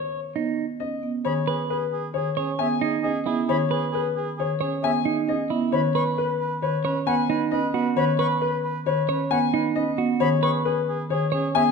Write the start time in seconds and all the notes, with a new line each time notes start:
Already playing: C#5
0.36 B3 D#4
0.80 C#4 D#5
1.03 B3
1.25 D#3 G#4 C#5 B5
1.47 G#4 B4
1.69 G#4 B4
1.92 G#4
2.14 D#3 G#4 C#5
2.37 C#4 G#4 C#5
2.59 B3 G#4 E5 G#5
2.81 D#4 G#4
3.03 C#4 G#4 D#5
3.26 B3 E4 G#4
3.48 D#3 G#4 C#5 B5
3.70 G#4 B4
3.92 G#4 B4
4.16 G#4
4.38 D#3 G#4 C#5
4.61 C#4 G#4 C#5
4.82 B3 G#4 E5 G#5
5.05 D#4 G#4
5.28 C#4 G#4 D#5
5.50 B3 E4
5.72 D#3 B4 C#5 B5
5.95 B4 C#6
6.18 B4
6.40 B4
6.62 D#3 B4 C#5
6.84 C#4 B4 C#5
7.06 B3 B4 F#5 G#5
7.30 D#4 B4
7.51 C#4 B4 D#5
7.74 B3 F#4 B4
7.96 D#3 B4 C#5 B5
8.18 B4 C#6
8.41 B4
8.64 B4
8.86 D#3 B4 C#5
9.09 C#4 B4 C#5
9.31 B3 B4 F#5 G#5
9.54 D#4 B4
9.76 C#4 B4 D#5
9.97 B3 F#4
10.20 D#3 G#4 C#5 B5
10.43 G#4 B4 C#6
10.65 G#4 B4
10.89 G#4
11.10 D#3 G#4 C#5
11.32 C#4 G#4 C#5
11.55 B3 G#4 E5 G#5